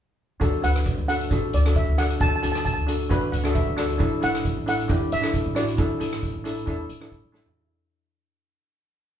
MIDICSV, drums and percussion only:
0, 0, Header, 1, 2, 480
1, 0, Start_track
1, 0, Key_signature, 2, "major"
1, 0, Tempo, 447094
1, 435, Time_signature, 4, 2, 24, 8
1, 9866, End_track
2, 0, Start_track
2, 0, Title_t, "Drums"
2, 441, Note_on_c, 9, 36, 92
2, 441, Note_on_c, 9, 42, 55
2, 548, Note_off_c, 9, 36, 0
2, 548, Note_off_c, 9, 42, 0
2, 683, Note_on_c, 9, 42, 73
2, 790, Note_off_c, 9, 42, 0
2, 814, Note_on_c, 9, 37, 70
2, 814, Note_on_c, 9, 42, 55
2, 922, Note_off_c, 9, 37, 0
2, 922, Note_off_c, 9, 42, 0
2, 924, Note_on_c, 9, 36, 78
2, 928, Note_on_c, 9, 42, 55
2, 1032, Note_off_c, 9, 36, 0
2, 1035, Note_off_c, 9, 42, 0
2, 1169, Note_on_c, 9, 42, 73
2, 1277, Note_off_c, 9, 42, 0
2, 1298, Note_on_c, 9, 42, 56
2, 1406, Note_off_c, 9, 42, 0
2, 1406, Note_on_c, 9, 36, 99
2, 1406, Note_on_c, 9, 42, 54
2, 1513, Note_off_c, 9, 36, 0
2, 1513, Note_off_c, 9, 42, 0
2, 1646, Note_on_c, 9, 42, 73
2, 1753, Note_off_c, 9, 42, 0
2, 1780, Note_on_c, 9, 37, 77
2, 1780, Note_on_c, 9, 42, 60
2, 1888, Note_off_c, 9, 37, 0
2, 1888, Note_off_c, 9, 42, 0
2, 1888, Note_on_c, 9, 36, 75
2, 1888, Note_on_c, 9, 42, 56
2, 1995, Note_off_c, 9, 36, 0
2, 1995, Note_off_c, 9, 42, 0
2, 2130, Note_on_c, 9, 37, 77
2, 2130, Note_on_c, 9, 42, 79
2, 2237, Note_off_c, 9, 37, 0
2, 2237, Note_off_c, 9, 42, 0
2, 2258, Note_on_c, 9, 42, 62
2, 2365, Note_off_c, 9, 42, 0
2, 2368, Note_on_c, 9, 42, 52
2, 2369, Note_on_c, 9, 36, 96
2, 2475, Note_off_c, 9, 42, 0
2, 2477, Note_off_c, 9, 36, 0
2, 2610, Note_on_c, 9, 42, 76
2, 2717, Note_off_c, 9, 42, 0
2, 2742, Note_on_c, 9, 37, 74
2, 2742, Note_on_c, 9, 42, 51
2, 2849, Note_off_c, 9, 37, 0
2, 2849, Note_off_c, 9, 42, 0
2, 2852, Note_on_c, 9, 36, 73
2, 2855, Note_on_c, 9, 42, 55
2, 2960, Note_off_c, 9, 36, 0
2, 2963, Note_off_c, 9, 42, 0
2, 3093, Note_on_c, 9, 42, 69
2, 3201, Note_off_c, 9, 42, 0
2, 3225, Note_on_c, 9, 42, 53
2, 3332, Note_off_c, 9, 42, 0
2, 3335, Note_on_c, 9, 36, 99
2, 3337, Note_on_c, 9, 42, 55
2, 3443, Note_off_c, 9, 36, 0
2, 3444, Note_off_c, 9, 42, 0
2, 3577, Note_on_c, 9, 42, 70
2, 3684, Note_off_c, 9, 42, 0
2, 3702, Note_on_c, 9, 37, 78
2, 3702, Note_on_c, 9, 42, 52
2, 3810, Note_off_c, 9, 37, 0
2, 3810, Note_off_c, 9, 42, 0
2, 3811, Note_on_c, 9, 42, 53
2, 3815, Note_on_c, 9, 36, 77
2, 3918, Note_off_c, 9, 42, 0
2, 3922, Note_off_c, 9, 36, 0
2, 4055, Note_on_c, 9, 37, 81
2, 4055, Note_on_c, 9, 42, 72
2, 4163, Note_off_c, 9, 37, 0
2, 4163, Note_off_c, 9, 42, 0
2, 4186, Note_on_c, 9, 42, 56
2, 4294, Note_off_c, 9, 42, 0
2, 4297, Note_on_c, 9, 36, 93
2, 4297, Note_on_c, 9, 42, 51
2, 4404, Note_off_c, 9, 36, 0
2, 4404, Note_off_c, 9, 42, 0
2, 4536, Note_on_c, 9, 42, 76
2, 4644, Note_off_c, 9, 42, 0
2, 4670, Note_on_c, 9, 37, 75
2, 4670, Note_on_c, 9, 42, 55
2, 4777, Note_off_c, 9, 37, 0
2, 4777, Note_off_c, 9, 42, 0
2, 4778, Note_on_c, 9, 36, 73
2, 4781, Note_on_c, 9, 42, 57
2, 4885, Note_off_c, 9, 36, 0
2, 4888, Note_off_c, 9, 42, 0
2, 5020, Note_on_c, 9, 42, 72
2, 5127, Note_off_c, 9, 42, 0
2, 5149, Note_on_c, 9, 42, 59
2, 5256, Note_off_c, 9, 42, 0
2, 5256, Note_on_c, 9, 36, 103
2, 5257, Note_on_c, 9, 42, 58
2, 5364, Note_off_c, 9, 36, 0
2, 5365, Note_off_c, 9, 42, 0
2, 5497, Note_on_c, 9, 42, 78
2, 5604, Note_off_c, 9, 42, 0
2, 5621, Note_on_c, 9, 37, 78
2, 5621, Note_on_c, 9, 42, 61
2, 5728, Note_off_c, 9, 37, 0
2, 5728, Note_off_c, 9, 42, 0
2, 5730, Note_on_c, 9, 42, 57
2, 5731, Note_on_c, 9, 36, 78
2, 5838, Note_off_c, 9, 42, 0
2, 5839, Note_off_c, 9, 36, 0
2, 5970, Note_on_c, 9, 37, 75
2, 5970, Note_on_c, 9, 42, 73
2, 6078, Note_off_c, 9, 37, 0
2, 6078, Note_off_c, 9, 42, 0
2, 6098, Note_on_c, 9, 42, 60
2, 6205, Note_off_c, 9, 42, 0
2, 6210, Note_on_c, 9, 36, 96
2, 6212, Note_on_c, 9, 42, 51
2, 6317, Note_off_c, 9, 36, 0
2, 6319, Note_off_c, 9, 42, 0
2, 6449, Note_on_c, 9, 42, 82
2, 6556, Note_off_c, 9, 42, 0
2, 6578, Note_on_c, 9, 37, 74
2, 6578, Note_on_c, 9, 42, 57
2, 6686, Note_off_c, 9, 37, 0
2, 6686, Note_off_c, 9, 42, 0
2, 6687, Note_on_c, 9, 36, 76
2, 6687, Note_on_c, 9, 42, 55
2, 6794, Note_off_c, 9, 36, 0
2, 6794, Note_off_c, 9, 42, 0
2, 6925, Note_on_c, 9, 42, 71
2, 7033, Note_off_c, 9, 42, 0
2, 7057, Note_on_c, 9, 42, 55
2, 7164, Note_off_c, 9, 42, 0
2, 7164, Note_on_c, 9, 36, 95
2, 7166, Note_on_c, 9, 42, 52
2, 7271, Note_off_c, 9, 36, 0
2, 7273, Note_off_c, 9, 42, 0
2, 7402, Note_on_c, 9, 42, 74
2, 7509, Note_off_c, 9, 42, 0
2, 7532, Note_on_c, 9, 37, 79
2, 7532, Note_on_c, 9, 42, 57
2, 7639, Note_off_c, 9, 37, 0
2, 7639, Note_off_c, 9, 42, 0
2, 7641, Note_on_c, 9, 36, 76
2, 7644, Note_on_c, 9, 42, 51
2, 7749, Note_off_c, 9, 36, 0
2, 7751, Note_off_c, 9, 42, 0
2, 7882, Note_on_c, 9, 38, 53
2, 7989, Note_off_c, 9, 38, 0
2, 8010, Note_on_c, 9, 43, 76
2, 8118, Note_off_c, 9, 43, 0
2, 9866, End_track
0, 0, End_of_file